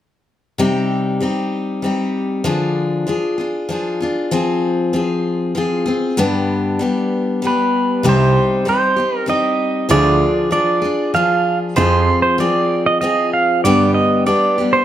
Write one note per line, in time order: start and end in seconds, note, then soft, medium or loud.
0.58 1.21 C3 medium
0.58 1.19 G3 medium
0.58 1.20 C4 medium
0.58 1.21 D#4 medium
0.58 1.22 G4 medium
1.20 1.81 G3 soft
1.20 1.83 C4 soft
1.20 1.83 D#4 soft
1.20 1.84 G4 medium
1.82 2.44 G3 soft
1.82 2.45 C4 soft
1.82 2.45 D#4 medium
1.82 2.46 G4 soft
2.44 3.07 D3 medium
2.44 3.06 F3 medium
2.44 3.06 D4 medium
2.44 3.08 F4 medium
2.44 3.09 G#4 medium
3.07 3.38 F3 soft
3.07 3.39 D4 soft
3.07 3.38 F4 soft
3.07 3.37 G#4 soft
3.38 3.69 D4 soft
3.38 3.69 F4 soft
3.38 3.69 G#4 soft
3.69 4.00 F3 soft
3.69 4.01 D4 soft
3.69 4.01 F4 medium
3.69 3.99 G#4 medium
4.00 4.31 D4 soft
4.00 4.31 F4 soft
4.00 4.32 G#4 soft
4.31 4.92 F3 medium
4.31 4.92 C4 medium
4.31 4.93 F4 medium
4.31 4.95 G#4 medium
4.93 5.54 F3 soft
4.93 5.55 C4 soft
4.93 5.56 F4 soft
4.93 5.57 G#4 soft
5.55 5.87 F3 medium
5.55 5.87 C4 soft
5.55 5.86 F4 medium
5.55 5.84 G#4 medium
5.86 6.18 C4 soft
5.86 6.18 F4 soft
5.86 6.18 G#4 soft
6.17 6.80 G2 medium
6.17 6.80 D3 medium
6.17 6.78 G3 medium
6.17 6.79 B3 medium
6.17 6.81 D4 medium
6.17 6.81 G4 medium
6.79 7.41 G3 medium
6.79 7.42 B3 soft
6.79 7.43 D4 soft
6.79 7.44 G4 soft
7.42 8.03 G3 medium
7.42 8.05 B3 soft
7.42 8.05 D4 soft
7.42 8.04 G4 soft
7.47 8.09 B4 medium
8.03 8.34 C2 medium
8.03 8.66 C3 medium
8.03 8.64 G3 medium
8.03 8.65 C4 medium
8.03 8.66 D#4 medium
8.03 8.67 G4 medium
8.09 8.68 C5 medium
8.65 8.97 G3 soft
8.65 8.98 C4 soft
8.65 8.97 D#4 soft
8.65 8.95 G4 medium
8.65 9.17 C5 medium
8.96 9.26 C4 soft
8.96 9.27 D#4 soft
8.96 9.28 G4 soft
9.17 9.29 A#4 medium
9.26 9.89 G3 soft
9.26 9.89 C4 medium
9.26 9.90 D#4 soft
9.26 9.90 G4 soft
9.26 9.90 D#5 medium
9.89 10.20 D2 medium
9.89 10.52 D3 medium
9.89 10.50 F3 medium
9.89 10.51 D4 medium
9.89 10.52 F4 medium
9.89 10.53 G#4 medium
9.89 10.51 D5 medium
10.51 10.83 F3 soft
10.51 10.84 D4 medium
10.51 10.83 F4 soft
10.51 10.80 G#4 soft
10.51 11.14 D5 medium
10.82 11.14 D4 soft
10.82 11.15 F4 soft
10.82 11.14 G#4 soft
11.14 11.75 F3 medium
11.14 11.76 D4 soft
11.14 11.76 F4 medium
11.14 11.77 G#4 medium
11.14 11.58 F5 medium
11.76 12.07 F2 medium
11.76 12.37 F3 medium
11.76 12.39 C4 medium
11.76 12.39 F4 medium
11.76 12.40 G#4 medium
11.76 12.21 C5 medium
12.22 12.39 C5 medium
12.38 13.00 F3 medium
12.38 13.01 C4 medium
12.38 13.02 F4 medium
12.38 13.02 G#4 medium
12.38 12.86 D5 medium
12.86 13.00 D#5 medium
13.01 13.64 F3 medium
13.01 13.64 C4 medium
13.01 13.65 F4 medium
13.01 13.65 G#4 medium
13.01 13.33 D#5 medium
13.33 13.62 F5 medium
13.64 13.93 G2 medium
13.64 14.26 G2 medium
13.64 14.27 D3 medium
13.64 14.26 G3 medium
13.64 14.26 B3 medium
13.64 14.28 G4 medium
13.64 13.94 D5 medium
13.94 14.24 D#5 medium
14.26 14.57 G3 soft
14.26 14.57 B3 soft
14.26 14.58 D4 medium
14.26 14.57 G4 medium
14.26 14.74 D5 medium
14.58 14.85 G3 soft
14.58 14.85 B3 soft
14.58 14.85 D4 soft
14.58 14.85 G4 soft
14.73 14.85 C5 medium